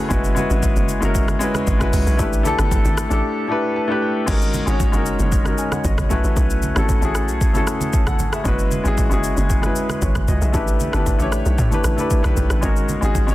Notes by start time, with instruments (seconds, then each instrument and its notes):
Already playing: grand piano A3 C#4 E4 F#4 G#4 A4 B4 B5
0.09 log drum bass F#1, grand piano G#3 C#4 E4 F#4 B4, kick, shaker
0.24 shaker
0.35 grand piano G#3 C#4 E4 F#4 B4, high conga, shaker
0.50 log drum bass G#1, shaker
0.63 kick, low conga, shaker
0.76 log drum bass F#1, high conga, shaker
0.89 shaker
1.01 log drum bass F#1, grand piano G#3 C#4 E4 F#4 A#4, shaker
1.15 kick, shaker
1.28 cross-stick, high conga, shaker
1.39 grand piano G#3 C#4 E4 F#4 B4, shaker
1.54 cross-stick, high conga, shaker
1.67 log drum bass G#1, kick, shaker
1.79 grand piano G#3 C#4 E4 F#4 B4, kick, cross-stick, high conga, shaker
1.93 log drum bass C#2, open hi-hat, high conga, low conga, shaker
2.07 log drum bass B1, shaker
2.17 log drum bass A1, grand piano A3 D4 E4 G4 B4, kick, shaker
2.33 shaker
2.43 grand piano A3 D4 E4 G4 A4, high conga, shaker
2.59 log drum bass G1, cross-stick, shaker
2.71 kick, low conga, shaker
2.85 log drum bass G#1, high conga, shaker
2.98 cross-stick, shaker
3.09 log drum bass A1, grand piano A3 D4 E4 G4 A4, shaker
3.48 grand piano A3 D4 E4 G4 B4
3.76 grand piano A5
3.88 grand piano A3 D4 E4 G4 B4
4.02 grand piano G5
4.26 log drum bass G#1, grand piano G#3 C#4 D#4 F#4 A#4, kick, crash, shaker
4.41 shaker
4.54 high conga, shaker
4.66 log drum bass G#1, grand piano G#3 C#4 D#4 F#4 C#5, shaker
4.80 kick, low conga, shaker
4.92 log drum bass F#1, grand piano G#3 C#4 D#4 F#4 A#4, high conga, shaker
5.06 shaker
5.19 log drum bass F#1, shaker
5.32 kick, shaker
5.44 grand piano G#3 C#4 D#4 F#4 A#4, cross-stick, high conga, shaker
5.58 grand piano G#5, shaker
5.72 grand piano A#4 F#5, cross-stick, high conga, shaker
5.84 log drum bass G#1, grand piano F#4 D#5, kick, shaker
5.98 grand piano C#5, kick, cross-stick, high conga, shaker
6.09 log drum bass B1, grand piano A3 C#4 E4 F#4 B4, high conga, low conga, shaker
6.24 log drum bass A1, shaker
6.37 log drum bass B1, kick, shaker
6.50 shaker
6.62 high conga, shaker
6.75 log drum bass G#1, grand piano A3 C#4 E4 F#4 A4, cross-stick, shaker
6.89 kick, low conga, shaker
7.01 log drum bass A1, grand piano A3 C#4 E4 F#4 G#4, high conga, shaker
7.15 cross-stick, shaker
7.28 log drum bass B1, shaker
7.41 kick, shaker
7.53 grand piano A3 C#4 E4 F#4 A4, high conga, shaker
7.67 cross-stick, shaker
7.81 high conga, shaker
7.93 grand piano C#5 A5, kick, shaker
8.07 grand piano A4 F#5, kick, cross-stick, high conga, shaker
8.19 high conga, low conga, shaker
8.33 grand piano G#4 E5, cross-stick, shaker
8.44 log drum bass F#1, grand piano G#3 C#4 E4 F#4 B4, kick, shaker
8.59 shaker
8.71 high conga, shaker
8.84 log drum bass G#1, grand piano G#3 C#4 E4 F#4 G#4, shaker
8.98 kick, low conga, shaker
9.10 log drum bass F#1, grand piano G#3 C#4 E4 F#4 G#4, high conga, shaker
9.24 shaker
9.37 log drum bass F#1, shaker
9.50 kick, shaker
9.62 grand piano G#3 C#4 E4 F#4 B4, cross-stick, high conga, shaker
9.76 shaker
9.89 cross-stick, high conga, shaker
10.02 log drum bass G#1, grand piano E4 C#5, kick, shaker
10.15 kick, cross-stick, high conga, shaker
10.28 log drum bass C#2, grand piano F#4 D#5, high conga, low conga, shaker
10.42 log drum bass B1, grand piano G#4 E5, shaker
10.52 log drum bass A1, grand piano A3 D4 E4 G4 B4, kick, shaker
10.68 shaker
10.80 high conga, shaker
10.92 log drum bass G1, grand piano A3 D4 E4 G4 B4, cross-stick, shaker
11.06 kick, low conga, shaker
11.18 log drum bass A1, grand piano A3 D4 E4 G4 C#5, high conga, shaker
11.32 cross-stick, shaker
11.46 log drum bass B1, shaker
11.58 log drum bass A2, kick, shaker
11.70 grand piano A3 D4 E4 G4 B4, high conga, shaker
11.84 log drum bass A1, cross-stick, shaker
11.96 grand piano A3 D4 E4 G4 B4, high conga, shaker
12.10 kick, shaker
12.23 log drum bass B1, grand piano A3 D4 E4 G4 B4, kick, cross-stick, high conga, shaker
12.37 log drum bass B1, high conga, low conga, shaker
12.50 log drum bass A1, cross-stick, shaker
12.61 log drum bass G#1, grand piano G#3 C#4 D#4 F#4 A#4, kick, shaker
12.76 shaker
12.89 high conga, shaker
13.01 log drum bass G#1, grand piano G#3 C#4 D#4 F#4 G#4, shaker
13.15 kick, low conga, shaker
13.27 log drum bass F#1, grand piano G#3 C#4 D#4 F#4 C#5, high conga, shaker